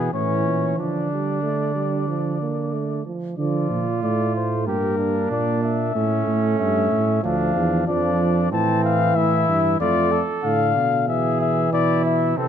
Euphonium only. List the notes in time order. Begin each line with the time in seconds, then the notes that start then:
0.13 E3
0.78 F3
1.11 G3
1.43 A3
1.75 G3
2.08 F3
2.41 A#3
2.73 A3
3.06 F3
3.38 F3
4.03 A3
4.67 A#3
5.95 A3
7.23 F3
7.87 F3
8.51 E3
9.80 A3
10.44 D3
11.08 E3
12.37 E3